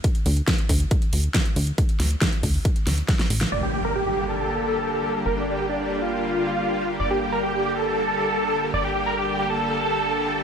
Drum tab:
HH |xxoxxxoxxxoxxxox|xxoxxxooxxoxxxox|----------------|----------------|
SD |----o-------o---|--o-o-----o-oo-o|----------------|----------------|
BD |o---o-o-o---o---|o---o-o-o---o---|----------------|----------------|

HH |----------------|----------------|
SD |----------------|----------------|
BD |----------------|----------------|